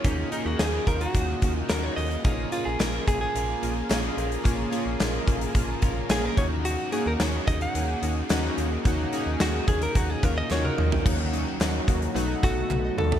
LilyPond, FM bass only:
\new Staff \with { instrumentName = "FM bass" } { \clef bass \time 4/4 \key ees \minor \tempo 4 = 109 ees,8 r16 ees,16 ees,8 ees,8 ees,8 ees,8 ees,8 ees,8 | bes,,8 r16 bes,,16 bes,,8 bes,,8 bes,,8 bes,,8 bes,,8 bes,,8 | bes,,8 r16 bes,,16 bes,,8 bes,,8 bes,,8 bes,,8 bes,,8 ees,8~ | ees,8 r16 ees,16 ees,8 ees,8 ees,8 ees,8 ees,8 ees,8 |
ees,8 r16 ees,16 ees,8 ees,8 ees,8 ees,8 ees,8 ees,8 | ees,4 ees,8 ees,8 b,,8 b,,8 b,,8 dis,8 | }